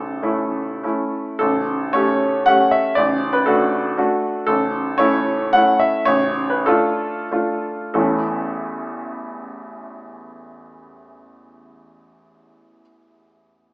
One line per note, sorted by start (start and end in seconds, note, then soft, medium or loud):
0.00 0.21 A0 soft
0.00 0.21 A1 soft
0.00 1.12 A4 soft
0.22 0.79 A3 soft
0.22 0.80 C#4 soft
0.22 0.80 E4 soft
0.83 1.36 A3 soft
0.83 1.37 C#4 soft
0.83 1.37 E4 soft
1.39 1.93 A0 soft
1.39 1.93 A1 soft
1.39 1.94 A4 medium
1.93 2.44 A3 soft
1.93 2.43 C#4 soft
1.93 2.44 G4 soft
1.93 2.47 C#5 medium
2.46 2.92 A3 soft
2.46 2.93 C#4 soft
2.46 2.92 G4 soft
2.46 2.71 F#5 medium
2.71 2.96 E5 medium
2.95 3.45 A0 soft
2.95 3.45 A1 soft
2.95 3.33 D5 medium
3.33 3.46 B4 medium
3.46 3.94 A3 soft
3.46 3.94 D4 soft
3.46 3.94 F#4 soft
3.46 4.22 A4 soft
3.98 4.43 A3 soft
3.98 4.44 D4 soft
3.98 4.44 F#4 soft
4.47 4.97 A0 soft
4.47 4.98 A1 soft
4.47 4.99 A4 medium
4.98 5.50 A3 soft
4.98 5.50 C#4 soft
4.98 5.50 E4 soft
4.98 5.53 C#5 medium
5.53 6.04 A3 soft
5.53 6.04 C#4 soft
5.53 6.04 E4 soft
5.53 5.80 F#5 medium
5.79 6.07 E5 medium
6.05 6.64 A0 soft
6.05 6.64 A1 soft
6.05 6.49 C#5 medium
6.50 6.66 B4 soft
6.66 7.27 A3 soft
6.66 7.28 D4 soft
6.66 7.28 F4 soft
6.66 7.65 A4 medium
7.31 7.92 A3 soft
7.31 7.93 D4 soft
7.31 7.93 F4 soft
7.94 12.81 A1 soft
7.94 12.81 E2 soft
7.94 12.82 E3 soft
7.94 12.81 A3 soft
7.94 12.82 C#4 soft
7.94 12.82 E4 soft
7.94 12.81 A4 soft